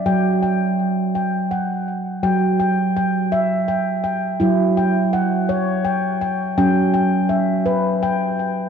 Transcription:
<<
  \new Staff \with { instrumentName = "Handpan" } { \time 6/8 \key e \mixolydian \tempo 4. = 55 << { <d'' e'' g''>8 g''4 g''8 fis''4 | g''8 g''8 g''4 g''8 g''8~ | g''8 g''8 fis''4 g''8 g''8 | g''8 g''8 e''4 g''4 | } \\ { r2. | fis4 r8 e''4 r8 | e'4 r8 cis''4 r8 | cis'4 r8 b'4 r8 | } >> }
  \new Staff \with { instrumentName = "Handpan" } { \clef bass \time 6/8 \key e \mixolydian fis2. | r2. | fis2. | fis2. | }
>>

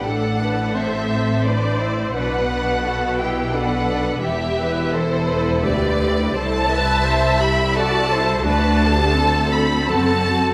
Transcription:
<<
  \new Staff \with { instrumentName = "Violin section" } { \time 3/4 \key d \mixolydian \tempo 4 = 85 fis''4 e''4 d''4 | fis''4. g''8 fis''4 | e''4 c''4 b'4 | a''4. b''8 a''4 |
a''4. b''8 a''4 | }
  \new Staff \with { instrumentName = "Violin section" } { \time 3/4 \key d \mixolydian a'2 b'8 c''8 | b'4 a'8 g'8 b'4 | g'4 a'8 b'8 d''4 | c''8 e''4. d''8 c''8 |
b'8 a'4. fis'4 | }
  \new Staff \with { instrumentName = "Viola section" } { \time 3/4 \key d \mixolydian << { a'8 b'8 c''8 c''4. | b'2 a'4 | g'8 b'8 a'4 g'8 g'8 | a'8 b'8 c''8 g'8 a'4 |
fis'8 g'8 a'4 a'4 | } \\ { d'4 c'4 d'8 e'8 | d'8 d'8 fis'8 e'8 d'8 d'8 | e'2. | e'2 fis'8 e'8 |
d'4 c'2 | } >> }
  \new Staff \with { instrumentName = "Cello section" } { \clef bass \time 3/4 \key d \mixolydian a,2. | b,2. | e,2 d,4 | c,2. |
d,2 fis,4 | }
  \new Staff \with { instrumentName = "Double bass section" } { \clef bass \time 3/4 \key d \mixolydian a,,2. | b,,2. | e,,2 d,4 | c,2. |
d,2 fis,,4 | }
>>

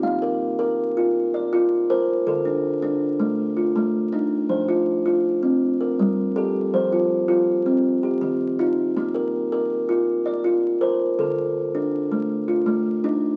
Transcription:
\new Staff \with { instrumentName = "Kalimba" } { \time 12/8 \key bes \major \tempo 4. = 108 << { <f' f''>8 bes'4. r4. d''4. c''4 | a'8 d'4. r4. f'4. ees'4 | c''8 f'4. r4. bes'4. a'4 | c''8 f'4. r4. g'4. f'4~ |
f'8 bes'4. r4. d''4. c''4 | a'4. r2 f'4. ees'4 | } \\ { bes4 r8 bes'4 f'4 r8 f'4 bes'4 | d4 r8 d'4 a4 r8 a4 d'4 | f4 r8 f'4 c'8 r4 g4 g'4 | f4 r8 f'4 c'8 r4 ees4 ees'4 |
bes4 r8 bes'4 f'4 r8 f'4 bes'4 | d4 r8 d'4 a4 r8 a4 d'4 | } >> }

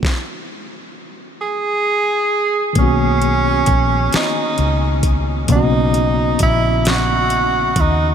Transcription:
<<
  \new Staff \with { instrumentName = "Tenor saxophone" } { \time 6/8 \key b \major \tempo 4. = 44 r4. gis'4. | cis'4. dis'4 r8 | dis'4 e'8 fis'4 dis'8 | }
  \new Staff \with { instrumentName = "Tine electric piano" } { \time 6/8 \key b \major r2. | <dis ais b cis' fis'>2. | <cis ais b cis' fis'>2. | }
  \new Staff \with { instrumentName = "Fingered electric bass" } { \clef bass \time 6/8 \key b \major r2. | b,,4 ais,,8 r8 cis,4 | b,,4 ais,,4. dis,8 | }
  \new DrumStaff \with { instrumentName = "Drums" } \drummode { \time 6/8 <bd sn>4. r4. | <hh bd>8 hh8 <hh bd>8 <hh sn>8 hh8 <hh bd>8 | <hh bd>8 hh8 <hh bd>8 <hh sn>8 hh8 <hh bd>8 | }
>>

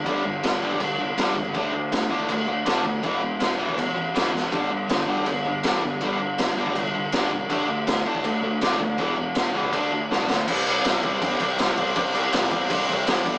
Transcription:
<<
  \new Staff \with { instrumentName = "Distorted electric guitar" } { \clef bass \time 4/4 \key c \lydian \tempo 4 = 161 <g, d g>8 <g, d>8 <g, d>8 <g, d g>8 <g, d>8 <g, d>8 <g, d g>8 <g, d>8 | <d a d'>8 <d a>8 <d a>8 <d a d'>8 <d a>8 <d a>8 <d a d'>8 <d a>8 | <e, b, e>8 <e, b,>8 <e, b,>8 <e, b, e>8 <e, b,>8 <e, b,>8 <e, b, e>8 <e, b,>8 | <g, d g>8 <g, d>8 <g, d>8 <g, d g>8 <g, d>8 <g, d>8 <g, d g>8 <g, d>8 |
<g, d g>8 <g, d>8 <g, d>8 <g, d g>8 <g, d>8 <g, d>8 <g, d g>8 <g, d>8 | <d a d'>8 <d a>8 <d a>8 <d a d'>8 <d a>8 <d a>8 <d a d'>8 <d a>8 | <e, b, e>8 <e, b,>8 <e, b,>8 <e, b, e>8 <d a d'>8 <d a>8 <d a d'>8 <d a>8 | <c g c'>8 <c g c'>8 <c g c'>8 <c g c'>8 <c g c'>8 <c g c'>8 <c g c'>8 <c g c'>8 |
<c g c'>8 <c g c'>8 <c g c'>8 <c g c'>8 <c g c'>8 <c g c'>8 <c g c'>8 <g, d g>8 | }
  \new Staff \with { instrumentName = "Overdriven electric guitar" } { \clef bass \time 4/4 \key c \lydian <g, d g>8 <g, d>8 <g, d>8 <g, d g>8 <g, d>8 <g, d>8 <g, d g>8 <g, d>8 | <d a d'>8 <d a>8 <d a>8 <d a d'>8 <d a>8 <d a>8 <d a d'>8 <d a>8 | <e, b, e>8 <e, b,>8 <e, b,>8 <e, b, e>8 <e, b,>8 <e, b,>8 <e, b, e>8 <e, b,>8 | <g, d g>8 <g, d>8 <g, d>8 <g, d g>8 <g, d>8 <g, d>8 <g, d g>8 <g, d>8 |
<g, d g>8 <g, d>8 <g, d>8 <g, d g>8 <g, d>8 <g, d>8 <g, d g>8 <g, d>8 | <d a d'>8 <d a>8 <d a>8 <d a d'>8 <d a>8 <d a>8 <d a d'>8 <d a>8 | <e, b, e>8 <e, b,>8 <e, b,>8 <e, b, e>8 <d a d'>8 <d a>8 <d a d'>8 <d a>8 | r1 |
r1 | }
  \new Staff \with { instrumentName = "Picked electric bass" } { \clef bass \time 4/4 \key c \lydian g,,8 g,,8 g,,8 g,,8 c,4 e,,8 cis,8 | d,8 d,8 d,8 a,8 d,8 d,8 c8 d,8 | e,,8 e,,8 e,,8 e,,8 a,,4 d,8 e,,8 | g,,8 g,,8 g,,8 d,8 g,,8 g,,8 e,8 g,,8 |
g,,8 g,,8 g,,8 g,,8 c,4 e,,8 c,8 | d,8 d,8 d,8 a,8 d,8 d,8 c8 d,8 | e,,8 e,,8 e,,8 cis,8 d,4 c,8 d,8 | c,8 c,8 c,8 c,8 g,,8 c,8 c,8 c,8 |
c,8 c,8 c,8 e,8 c,8 c,8 a,,8 g,,8 | }
  \new DrumStaff \with { instrumentName = "Drums" } \drummode { \time 4/4 <cymc bd>4 <cymc sn>8. bd16 <cymc bd>4 <cymc sn>8 bd8 | <cymc bd>4 <cymc sn>8. bd16 <cymc bd>4 <cymc sn>8 bd8 | <cymc bd>4 <cymc sn>8. bd16 <cymc bd>4 <cymc sn>8 sn8 | <cymc bd>4 <cymc sn>8. bd16 <cymc bd>4 <cymc sn>8 bd8 |
<cymc bd>4 <cymc sn>8. bd16 <cymc bd>4 <cymc sn>8 bd8 | <cymc bd>4 <cymc sn>8. bd16 <cymc bd>4 <cymc sn>8 bd8 | <cymc bd>4 <cymc sn>8. bd16 <cymc bd>4 sn8 sn8 | <cymc bd>8 cymc8 <cymc sn>8 <cymc bd>8 <cymc bd>8 <cymc bd>8 <cymc sn>8 <cymc bd>8 |
<cymc bd>8 cymc8 <cymc sn>8 <cymc bd>8 <cymc bd>8 <cymc bd>8 <cymc sn>8 <cymc bd>8 | }
>>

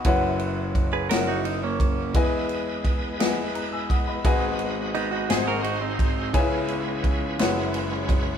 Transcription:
<<
  \new Staff \with { instrumentName = "Grand piano" } { \time 6/8 \key fis \mixolydian \tempo 4. = 57 << { dis'''16 r2 r8. | r2 <ais'' fis'''>16 <gis'' e'''>16 <fis'' dis'''>16 <dis'' b''>16~ | <dis'' b''>16 r2 r8. | r2. | } \\ { <e' fis' b' cis'' fis''>4. <e' fis' gis' ais' cis'' fis''>4. | <e' gis' b' dis'' gis''>4. <e' gis' b' dis'' fis'' gis''>4. | <fis' gis' b' dis'' gis''>4. <fis' gis' bis' dis'' gis''>4. | <dis' e' gis' b' cis'' gis''>4. <e' gis' b' cis'' fis''>4. | } >> }
  \new Staff \with { instrumentName = "Grand piano" } { \clef bass \time 6/8 \key fis \mixolydian <fis,, fis,>4. <fis,, fis,>4. | <e, e>2. | <gis,, gis,>4. <gis,, gis,>4. | <cis, cis>4. <fis,, fis,>4. | }
  \new Staff \with { instrumentName = "Clean electric guitar" } { \time 6/8 \key fis \mixolydian r4 r16 <gis' b'>16 <fis' ais'>16 <dis' fis'>16 dis'16 <ais cis'>8. | r2. | r4 <b dis'>16 <dis' fis'>16 gis'16 <fis' ais'>16 <dis' fis'>16 <bis dis'>8. | r2. | }
  \new Staff \with { instrumentName = "Tonewheel organ" } { \time 6/8 \key fis \mixolydian r2. | <gis b e' ais' b' dis''>2. | <gis b dis' fis' b'>4. <gis bis dis' fis' b' bis'>4. | <gis b cis' e' b'>4. <gis cis' e' fis' ais' b'>4. | }
  \new DrumStaff \with { instrumentName = "Drums" } \drummode { \time 6/8 <bd cymr>8 cymr8 <bd cymr>8 <cymr sn>8 cymr8 <bd cymr>8 | <bd cymr>8 cymr8 <bd cymr>8 <cymr sn>8 cymr8 <bd cymr>8 | <bd cymr>8 cymr8 cymr8 <cymr sn>8 cymr8 <bd cymr>8 | <bd cymr>8 cymr8 <bd cymr>8 <cymr sn>8 cymr8 <bd cymr>8 | }
>>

